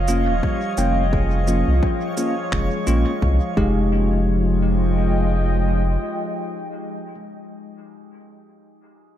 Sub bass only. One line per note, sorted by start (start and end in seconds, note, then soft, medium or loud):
0.00 0.29 F1 loud
0.28 0.41 D#1 medium
0.78 1.64 F1 loud
1.68 1.81 C2 medium
2.52 2.70 F1 medium
2.87 3.05 A#1 medium
3.22 3.40 C2 loud
3.57 5.97 F1 loud